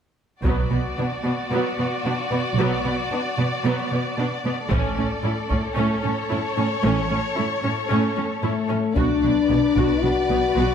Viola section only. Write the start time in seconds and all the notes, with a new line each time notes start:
0.45 F#3 B3
0.71 B3
0.98 B3 D4
1.25 B3
1.52 F#3 B3
1.79 B3
2.05 B3 D4
2.31 B3
2.58 F#3 B3
2.85 B3
3.12 B3 D4
3.39 B3
3.65 F#3 B3
3.93 B3
4.19 B3 D4
4.45 B3
4.70 A3 C#4
4.97 C#4
5.23 C#4 E4
5.49 C#4
5.75 A3 C#4
6.03 C#4
6.30 C#4 E4
6.57 C#4
6.83 A3 C#4
7.10 C#4
7.35 C#4 E4
7.63 C#4
7.88 A3 C#4
8.16 C#4
8.42 C#4 E4
8.69 C#4
8.96 F#4
9.23 D4
9.49 B3
9.76 F#4
10.02 D4
10.30 B3
10.57 F#4